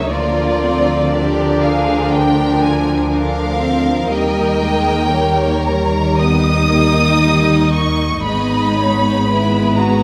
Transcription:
Already playing: C#2 C#3 F#3 D#4 E5
0.11 D2 D3 F3 A#3 F4 A#4 D5
0.62 C4
1.12 D4 G4 A#4
1.62 G#4 F5
2.12 A#4 G5
2.62 G#5
3.11 D4 A#4 F5
3.61 C4
4.11 D#2 D#3 G3 A#3 D#5 G5
4.61 G#3
5.12 G3 A#3 C#5
5.65 G3 A#5
6.20 B3 D#4 D#5 D#6
6.73 A#3
7.24 G3 A#3
7.74 A#3 C#6
8.25 G#1 G#2 G#3 B3 D#4 D#5 B5
8.77 C#5
9.28 E4 B4
9.78 F#4 A#5

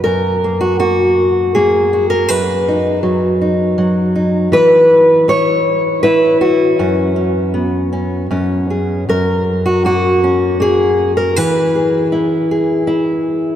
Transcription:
0.04 F#2 A#4
0.44 A#3
0.61 F#4
0.79 A#3 F#4
1.55 A#3 G#4
1.93 F#4
2.10 A#4
2.28 F#2 B4
2.68 D#4
3.03 F#3
3.41 D#4
3.78 F#3
4.16 D#4
4.52 E3 B4
5.28 E4 C#5
6.03 E4 B4
6.41 F#4
6.79 F#2 C#4
7.16 C#4
7.54 B3
7.93 C#4
8.31 F#2 C#4
8.70 G#4
9.09 F#2 A#4
9.66 F#4
9.85 A#3 F#4
10.24 C#4
10.60 A#3 G#4
11.17 A#4
11.36 E3 B4
11.75 G#4
12.12 E4
12.51 G#4
12.87 E4

